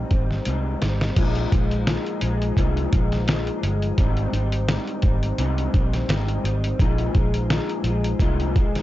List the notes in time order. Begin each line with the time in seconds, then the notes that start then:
Already playing: G3 C4
0.10 G#1 G3 C4 D#4, kick, closed hi-hat
0.31 snare
0.45 C2 G#2 G3 C4 D#4, closed hi-hat
0.81 G#1 G3 C4 D#4, snare, closed hi-hat
1.01 snare
1.16 A#1 A#2 F3 G#3 D#4, kick, closed hi-hat, crash
1.35 closed hi-hat
1.52 A#1 F3 G#3 D#4, kick, closed hi-hat
1.71 closed hi-hat
1.87 A#2 F3 G#3 D#4, snare, closed hi-hat
2.06 closed hi-hat
2.21 A#1 F3 G#3 D#4, closed hi-hat
2.42 closed hi-hat
2.57 C2 A#2 F3 G#3 D#4, kick, closed hi-hat
2.77 closed hi-hat
2.92 A#1 F3 G#3 D#4, kick, closed hi-hat
3.12 snare, closed hi-hat
3.28 A#2 F3 G#3 D#4, snare, closed hi-hat
3.47 closed hi-hat
3.62 G1 F3 G#3 D#4, closed hi-hat
3.82 closed hi-hat
3.98 G#1 G#2 G3 C4 D#4, kick, closed hi-hat
4.17 closed hi-hat
4.33 G#1 G3 C4 D#4, closed hi-hat
4.52 closed hi-hat
4.68 G#2 G3 C4 D#4, snare, closed hi-hat
4.87 closed hi-hat
5.02 G#1 G3 C4 D#4, kick, closed hi-hat
5.23 closed hi-hat
5.38 C2 G#2 G3 C4 D#4, closed hi-hat
5.58 closed hi-hat
5.73 A#1 G3 C4 D#4, kick, closed hi-hat
5.93 snare, closed hi-hat
6.08 G#1 G#2 G3 C4 D#4, snare, closed hi-hat
6.28 closed hi-hat
6.44 G#1 G3 C4 D#4, closed hi-hat
6.64 closed hi-hat
6.79 A#1 A#2 F3 G#3 D#4, kick, closed hi-hat
6.98 closed hi-hat
7.15 A#1 F3 G#3 D#4, kick, closed hi-hat
7.34 closed hi-hat
7.50 A#2 F3 G#3 D#4, snare, closed hi-hat
7.69 closed hi-hat
7.84 A#1 F3 G#3 D#4, closed hi-hat
8.04 closed hi-hat
8.19 C2 A#2 F3 G#3 D#4, kick, closed hi-hat
8.40 closed hi-hat
8.56 A#1 F3 G#3 D#4, kick, closed hi-hat
8.75 snare, closed hi-hat